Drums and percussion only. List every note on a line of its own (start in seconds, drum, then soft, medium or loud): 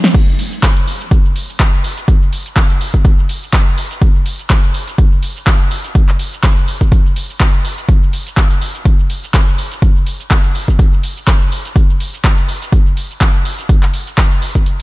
0.04 snare medium
0.15 kick loud
0.15 closed hi-hat medium
0.15 crash loud
0.15 cabasa medium
0.29 cabasa soft
0.39 open hi-hat loud
0.53 closed hi-hat soft
0.53 cabasa medium
0.63 kick loud
0.63 clap loud
0.63 closed hi-hat medium
0.63 cabasa medium
0.77 closed hi-hat medium
0.77 cabasa soft
0.88 open hi-hat medium
1.01 closed hi-hat soft
1.01 cabasa medium
1.11 kick loud
1.11 closed hi-hat medium
1.11 cabasa medium
1.25 cabasa soft
1.36 open hi-hat loud
1.50 cabasa medium
1.60 kick loud
1.60 clap loud
1.60 closed hi-hat medium
1.60 cabasa medium
1.74 cabasa soft
1.84 open hi-hat loud
1.98 closed hi-hat medium
1.98 cabasa medium
2.08 kick loud
2.08 closed hi-hat medium
2.08 cabasa medium
2.22 cabasa soft
2.33 open hi-hat loud
2.46 closed hi-hat soft
2.46 cabasa medium
2.56 kick loud
2.56 clap loud
2.56 closed hi-hat medium
2.56 cabasa medium
2.70 closed hi-hat medium
2.70 cabasa soft
2.81 open hi-hat loud
2.94 kick medium
2.94 closed hi-hat soft
2.94 cabasa medium
3.05 kick loud
3.05 closed hi-hat medium
3.05 cabasa medium
3.19 cabasa soft
3.29 open hi-hat loud
3.43 cabasa medium
3.53 kick loud
3.53 clap loud
3.53 closed hi-hat medium
3.53 cabasa medium
3.67 cabasa soft
3.78 open hi-hat loud
3.91 closed hi-hat medium
3.91 cabasa medium
4.02 kick loud
4.02 closed hi-hat medium
4.02 cabasa medium
4.16 cabasa soft
4.26 open hi-hat loud
4.39 closed hi-hat soft
4.39 cabasa medium
4.50 kick loud
4.50 clap loud
4.50 closed hi-hat medium
4.50 cabasa medium
4.64 closed hi-hat medium
4.64 cabasa soft
4.74 open hi-hat loud
4.88 closed hi-hat soft
4.88 cabasa medium
4.98 kick loud
4.98 closed hi-hat medium
4.98 cabasa soft
5.12 cabasa soft
5.23 open hi-hat loud
5.36 cabasa medium
5.47 kick loud
5.47 clap loud
5.47 closed hi-hat medium
5.47 cabasa medium
5.61 cabasa soft
5.71 open hi-hat loud
5.84 closed hi-hat medium
5.84 cabasa medium
5.95 kick loud
5.95 closed hi-hat medium
5.95 cabasa medium
6.09 clap soft
6.09 cabasa soft
6.19 open hi-hat loud
6.33 closed hi-hat soft
6.33 cabasa medium
6.44 kick loud
6.44 clap loud
6.44 closed hi-hat medium
6.44 cabasa medium
6.57 closed hi-hat medium
6.57 cabasa soft
6.68 open hi-hat loud
6.81 kick medium
6.81 closed hi-hat soft
6.81 cabasa medium
6.92 kick loud
6.92 closed hi-hat medium
6.92 cabasa medium
7.06 cabasa soft
7.16 open hi-hat loud
7.30 cabasa medium
7.40 kick loud
7.40 clap loud
7.40 closed hi-hat medium
7.40 cabasa medium
7.54 cabasa soft
7.65 open hi-hat loud
7.78 closed hi-hat soft
7.78 cabasa medium
7.89 kick loud
7.89 closed hi-hat medium
7.89 cabasa medium
8.03 cabasa soft
8.13 open hi-hat loud
8.27 closed hi-hat soft
8.27 cabasa medium
8.37 kick loud
8.37 clap loud
8.37 closed hi-hat medium
8.37 cabasa medium
8.51 closed hi-hat medium
8.51 cabasa soft
8.62 open hi-hat medium
8.75 closed hi-hat soft
8.75 cabasa medium
8.85 kick loud
8.85 closed hi-hat medium
8.85 cabasa medium
8.99 cabasa soft
9.10 open hi-hat loud
9.24 cabasa medium
9.34 kick loud
9.34 clap loud
9.34 closed hi-hat medium
9.34 cabasa medium
9.48 cabasa soft
9.58 open hi-hat loud
9.72 closed hi-hat medium
9.72 cabasa medium
9.82 kick loud
9.82 closed hi-hat medium
9.82 cabasa medium
9.96 cabasa soft
10.07 open hi-hat loud
10.20 closed hi-hat soft
10.20 cabasa medium
10.31 kick loud
10.31 clap loud
10.31 closed hi-hat medium
10.31 cabasa medium
10.44 closed hi-hat medium
10.44 cabasa soft
10.55 open hi-hat medium
10.68 kick medium
10.68 cabasa medium
10.79 kick loud
10.79 closed hi-hat medium
10.79 cabasa medium
10.93 cabasa soft
11.03 open hi-hat loud
11.17 cabasa medium
11.27 kick loud
11.27 clap loud
11.27 closed hi-hat medium
11.27 cabasa medium
11.42 cabasa soft
11.52 open hi-hat medium
11.65 closed hi-hat medium
11.65 cabasa medium
11.76 kick loud
11.76 closed hi-hat medium
11.76 cabasa medium
11.90 cabasa soft
12.00 open hi-hat loud
12.14 closed hi-hat soft
12.14 cabasa medium
12.24 kick loud
12.24 clap loud
12.24 closed hi-hat medium
12.24 cabasa medium
12.38 closed hi-hat medium
12.38 cabasa soft
12.49 open hi-hat medium
12.62 closed hi-hat soft
12.62 cabasa medium
12.72 kick loud
12.72 closed hi-hat medium
12.72 cabasa medium
12.87 cabasa soft
12.97 open hi-hat loud
13.11 cabasa medium
13.21 kick loud
13.21 clap loud
13.21 closed hi-hat medium
13.21 cabasa medium
13.35 cabasa soft
13.45 open hi-hat medium
13.59 closed hi-hat medium
13.59 cabasa medium
13.69 kick loud
13.69 closed hi-hat medium
13.69 cabasa medium
13.83 clap soft
13.83 closed hi-hat soft
13.83 cabasa soft
13.94 open hi-hat loud
14.07 closed hi-hat soft
14.07 cabasa medium
14.18 kick loud
14.18 clap loud
14.18 closed hi-hat medium
14.18 cabasa medium
14.31 closed hi-hat medium
14.31 cabasa soft
14.42 open hi-hat medium
14.55 kick medium
14.55 cabasa medium
14.66 closed hi-hat medium
14.66 cabasa medium